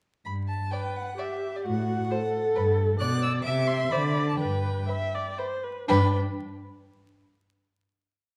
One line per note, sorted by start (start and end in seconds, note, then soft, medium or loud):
0.25 0.65 G2 soft
0.25 0.33 B5 medium
0.48 0.73 A5 medium
0.71 1.16 B4 soft
0.71 0.80 D5 soft
0.71 0.98 G5 medium
0.97 1.21 F#5 medium
1.18 1.67 G4 soft
1.18 1.26 D5 soft
1.18 1.58 E5 medium
1.56 1.65 D5 medium
1.65 2.03 A2 medium
1.65 2.12 F#4 medium
1.65 2.76 F#5 medium
2.11 3.00 A4 medium
2.11 2.19 C5 soft
2.55 2.93 G2 medium
2.55 2.64 B4 medium
3.00 3.38 B2 medium
3.00 3.45 D5 medium
3.00 3.09 D5 medium
3.00 3.21 F#6 loud
3.23 3.31 E6 loud
3.44 3.84 C3 medium
3.44 3.54 E5 medium
3.44 3.94 E5 medium
3.44 3.69 D6 medium
3.67 3.92 C6 medium
3.90 4.33 D3 medium
3.90 4.00 C5 medium
3.90 4.40 D5 medium
3.90 4.28 B5 medium
4.29 4.38 A5 medium
4.39 4.83 G2 medium
4.39 4.85 B4 medium
4.39 5.37 G5 medium
4.89 4.97 B4 soft
4.89 5.17 E5 medium
5.15 5.40 D5 medium
5.38 5.46 B4 soft
5.38 5.65 C5 medium
5.64 5.88 B4 soft
5.88 6.16 G2 medium
5.88 6.16 D4 medium
5.88 6.16 B4 medium
5.88 6.16 G5 medium